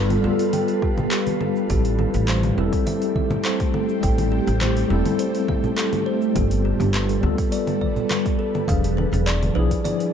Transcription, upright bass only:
0.00 0.16 G1 loud
0.24 0.34 D2 medium
1.70 2.05 A1 medium
2.14 2.49 A1 loud
2.58 2.67 E1 loud
4.03 4.38 A1 medium
4.47 4.82 A1 loud
4.90 5.00 E1 loud
6.36 6.71 G1 medium
6.80 7.15 G1 loud
7.23 7.33 D2 loud
8.69 9.04 E1 loud
9.13 9.48 E1 loud
9.56 9.66 B1 loud

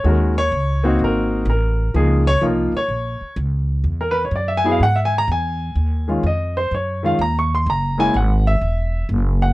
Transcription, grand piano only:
0.04 0.33 D#3 medium
0.04 0.33 G#3 medium
0.04 0.33 C#4 medium
0.04 0.33 F#4 medium
0.04 0.07 A4 soft
0.08 0.37 A#4 medium
0.38 0.97 C#5 loud
0.83 1.44 A#3 medium
0.83 1.44 C4 medium
0.83 1.45 D#4 medium
0.83 1.45 F#4 medium
1.04 1.46 A#4 medium
1.50 2.24 A#4 medium
1.94 2.23 F3 medium
1.94 2.23 A#3 medium
1.94 2.24 D#4 medium
1.94 2.24 G#4 medium
2.27 2.43 C#5 loud
2.41 2.71 F3 medium
2.41 2.71 A#3 medium
2.41 2.71 D#4 medium
2.41 2.71 F4 medium
2.46 2.75 A#4 medium
2.77 3.35 C#5 loud
4.01 4.16 A#4 medium
4.11 4.22 B4 loud
4.25 4.33 C#5 medium
4.36 4.50 D5 medium
4.48 4.64 E5 medium
4.57 4.69 G#5 loud
4.64 4.79 F#3 medium
4.64 4.80 B3 medium
4.64 4.80 E4 medium
4.64 4.80 G#4 medium
4.71 4.80 F5 medium
4.83 4.97 F#5 loud
4.96 5.12 E5 medium
5.05 5.17 G#5 loud
5.18 5.27 A#5 loud
5.32 6.05 G#5 medium
6.08 6.22 D#3 medium
6.08 6.23 G#3 medium
6.08 6.23 C#4 medium
6.08 6.23 F4 medium
6.27 6.56 D#5 medium
6.57 6.72 C5 medium
6.74 7.04 C#5 medium
7.03 7.18 D#3 medium
7.03 7.18 G#3 medium
7.03 7.18 C#4 medium
7.03 7.18 F4 medium
7.03 7.20 F5 medium
7.21 7.36 A#5 medium
7.39 7.52 C#6 medium
7.55 7.68 C6 medium
7.70 7.99 A#5 medium
7.98 8.13 G#3 medium
7.98 8.13 A#3 medium
7.98 8.13 C#4 medium
7.98 8.13 E4 medium
7.98 8.15 G#5 loud
8.17 8.46 F#5 medium
8.47 9.06 E5 medium
9.42 9.53 F#5 medium

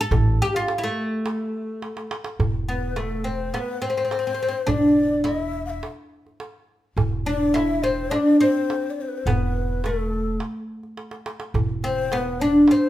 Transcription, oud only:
0.01 0.42 A4 loud
0.42 0.56 G4 loud
0.56 0.77 F4 medium
0.78 0.84 E4 medium
0.84 2.10 A3 medium
2.69 2.96 B3 medium
2.96 3.26 A3 medium
3.24 3.55 C4 medium
3.54 3.84 B3 medium
3.82 3.89 C4 medium
3.90 3.96 C4 medium
3.97 4.03 C4 medium
4.05 4.11 C4 medium
4.12 4.18 C4 medium
4.19 4.26 C4 soft
4.27 4.33 C4 medium
4.34 4.41 C4 soft
4.42 4.47 C4 medium
4.48 4.57 C4 medium
4.67 5.24 D4 medium
5.24 5.78 E4 medium
7.26 7.54 D4 medium
7.54 7.83 E4 medium
7.84 8.11 C4 medium
8.11 8.41 D4 medium
8.41 9.26 C4 medium
9.27 9.85 B3 medium
9.86 10.38 A3 medium
11.84 12.14 C4 medium
12.12 12.42 B3 medium
12.41 12.71 D4 medium
12.71 12.89 C4 medium

